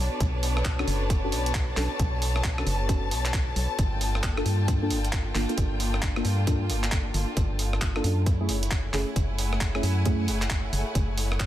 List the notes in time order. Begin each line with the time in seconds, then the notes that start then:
Already playing: B3 D4 F#4 A4 B4 C#5 A5
0.20 B1, kick, closed hi-hat
0.43 open hi-hat
0.57 cross-stick
0.65 kick, clap, closed hi-hat
0.79 C#4 D4 F#4 A4, cross-stick
0.88 F#1, open hi-hat
1.10 kick, closed hi-hat
1.24 C#4 D4 F#4 A4
1.32 B1, open hi-hat
1.46 closed hi-hat
1.55 kick, clap, closed hi-hat
1.77 B1 C#4 D4 F#4 A4, clap, open hi-hat
1.99 B1, kick, closed hi-hat
2.22 open hi-hat
2.36 cross-stick
2.44 kick, clap, closed hi-hat
2.58 C#4 D4 F#4 A4, cross-stick
2.67 F#1, open hi-hat
2.89 C#4 D4 F#4 A4, kick, closed hi-hat
3.11 B1, open hi-hat
3.25 clap, closed hi-hat
3.34 kick, clap, closed hi-hat
3.56 B1, open hi-hat
3.78 G1 A#3 D4 F4, kick, closed hi-hat
3.86 G5
4.01 A#3, open hi-hat
4.15 cross-stick
4.23 kick, clap, closed hi-hat
4.37 A#3 D4 F4 A4, cross-stick
4.46 G2, open hi-hat
4.68 kick, closed hi-hat
4.82 A#3 D4 F4 A4
4.90 G1, open hi-hat
5.05 closed hi-hat
5.13 kick, clap, closed hi-hat
5.35 G1 A#3 D4 F4 A4, clap, open hi-hat
5.49 A#3 D4 F4 A4, closed hi-hat
5.58 G1, kick, closed hi-hat
5.80 open hi-hat
5.94 cross-stick
6.02 kick, clap, closed hi-hat
6.16 A#3 D4 F4 A4, cross-stick
6.25 G2, open hi-hat
6.47 A#3 D4 F4 A4, kick, closed hi-hat
6.70 G1, open hi-hat
6.84 clap, closed hi-hat
6.92 kick, clap, closed hi-hat
7.14 G1, open hi-hat
7.37 G1, kick, closed hi-hat
7.59 open hi-hat
7.73 cross-stick
7.82 kick, clap, closed hi-hat
7.96 A#3 D4 F4 A4, cross-stick
8.04 F#2, open hi-hat
8.26 A3 E4 G#4 C#5, kick, closed hi-hat
8.40 A3 C#4 E4 G#4
8.46 F#1 F#5, open hi-hat
8.63 G#5, closed hi-hat
8.71 kick, clap, closed hi-hat
8.94 F#1 A3 C#4 E4 G#4, clap, open hi-hat
9.16 F#1, kick, closed hi-hat
9.38 open hi-hat
9.53 cross-stick
9.61 kick, clap, closed hi-hat
9.75 A3 C#4 E4 G#4, cross-stick
9.83 F#2, open hi-hat
10.05 A3 C#4 E4 G#4, kick, closed hi-hat
10.28 F#1, open hi-hat
10.42 clap, closed hi-hat
10.50 kick, clap, closed hi-hat
10.73 F#1, open hi-hat
10.95 F#1, kick, closed hi-hat
11.18 open hi-hat
11.32 cross-stick
11.40 kick, clap, closed hi-hat